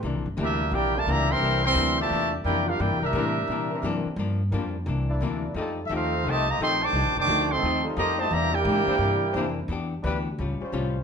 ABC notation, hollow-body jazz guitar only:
X:1
M:4/4
L:1/8
Q:"Swing" 1/4=174
K:C
V:1 name="Hollow-body jazz guitar"
[C,E,_B,D] z [C,E,B,D] z [C,E,B,D] z [C,E,B,D] z | [C,E,_B,D] z [C,E,B,D] z [C,E,B,D] z [C,E,B,D] z | [C,E,_B,D] z [C,E,B,D] z [C,E,B,D] z [C,E,B,D] z | [G,,F,_B,D] z [G,,F,B,D] z [C,E,B,D] z [C,E,B,D] z |
[F,A,_EG] z [F,A,EG] z [F,A,EG] z [F,A,EG] z | [F,A,_EG] z [F,A,EG] z [F,A,EG] z [F,A,EG] z | [C,E,_B,D] z [C,E,B,D] z [C,E,B,D] z [C,E,B,D] z | [E,B,DG] z [E,B,DG] z [A,,G,^C^E] z [A,,G,CE] z |]